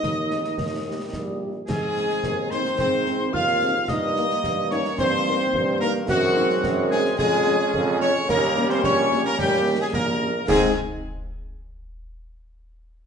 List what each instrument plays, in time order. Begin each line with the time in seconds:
Already playing: euphonium D#4, trumpet section D#5, woodwind section D#5, piccolo D#6
0.02 tuba D#2, trombone section D#3, concert bass drum, snare
0.31 french horn section C4 D#4 G#4, snare
0.44 snare
0.58 tuba D#2, concert bass drum, snare
0.85 trombone section G3, french horn section A#3 D#4 G4
1.12 tuba A#1, trombone section G3, concert bass drum, snare
1.42 french horn section A#3 D#4 G4
1.67 tuba G#2, trombone section D#3 C4, euphonium G#3, trumpet section G#4, woodwind section G#4, piccolo G#5, concert bass drum, snare, crash
1.96 french horn section C4 D#4 G#4, snare
2.10 snare
2.23 tuba D#2, concert bass drum, snare
2.50 euphonium C4, french horn section C4 D#4 G#4, woodwind section C5, trumpet section C5, piccolo C6, snare
2.65 snare
2.77 tuba G#2, euphonium C4, woodwind section C5, trumpet section C5, piccolo C6, concert bass drum, snare
3.06 french horn section C4 D#4 G#4, snare
3.33 tuba D#2, euphonium F4, woodwind section F5, trumpet section F5, piccolo F6, concert bass drum
3.61 french horn section C4 D#4 G#4, snare
3.88 tuba G2, trombone section D#3 A#3, euphonium D#4, woodwind section D#5, trumpet section D#5, piccolo D#6, concert bass drum, snare, crash
4.16 french horn section A#3 D#4 A#4, snare
4.30 snare
4.44 tuba G2, concert bass drum, snare
4.70 french horn section A#3 D#4 A#4, euphonium C#4, woodwind section C#5, trumpet section C#5, piccolo C#6, snare
4.85 snare
4.98 tuba G2, euphonium C4, trumpet section C5, woodwind section C5, piccolo C6, concert bass drum, snare
5.26 french horn section A#3 D#4 A#4, snare
5.53 tuba G2, concert bass drum
5.80 euphonium A#3, french horn section A#3 D#4 A#4, woodwind section A#4, trumpet section A#4, piccolo A#5, snare
6.08 tuba F#2, euphonium F#3, trombone section G#3 C4, woodwind section F#4, trumpet section F#4, piccolo F#5, concert bass drum, snare, crash
6.36 french horn section C4 D#4 G#4, snare
6.50 snare
6.63 tuba F#2, concert bass drum, snare
6.90 euphonium G#3, french horn section C4 D#4 G#4, trumpet section G#4, woodwind section G#4, piccolo G#5, snare
7.05 snare
7.17 tuba F2, euphonium G#3, trombone section C#4, trumpet section G#4, woodwind section G#4, piccolo G#5, concert bass drum, snare
7.46 french horn section C#4 G#4, snare
7.73 tuba F2, concert bass drum
8.00 euphonium C#4, french horn section C#4 G#4, trumpet section C#5, woodwind section C#5, piccolo C#6, snare
8.29 tuba D#2, trombone section G3 C#4, euphonium A#3, trumpet section A#4, woodwind section A#4, piccolo A#5, concert bass drum, snare, crash
8.56 french horn section A#3 C#4 G4, snare
8.70 euphonium C4, trumpet section C5, woodwind section C5, piccolo C6, snare
8.83 tuba A#1, euphonium C#4, trumpet section C#5, woodwind section C#5, piccolo C#6, concert bass drum, snare
9.11 french horn section A#3 C#4 G4, snare
9.25 euphonium A#3, trumpet section A#4, woodwind section A#4, piccolo A#5, snare
9.38 tuba D#2, euphonium G3, trumpet section G4, woodwind section G4, piccolo G5, concert bass drum, snare
9.67 french horn section A#3 C#4 G4
9.79 euphonium G#3, trumpet section G#4, woodwind section G#4, piccolo G#5
9.93 tuba A#1, euphonium A#3, trumpet section A#4, woodwind section A#4, piccolo A#5, concert bass drum, snare
10.21 french horn section A#3 C#4 G4
10.47 tuba G#2, euphonium G#3, trombone section G#3 C4, french horn section G#3 C4 D#4, woodwind section G#4, trumpet section G#4, piccolo G#5, concert bass drum, snare, crash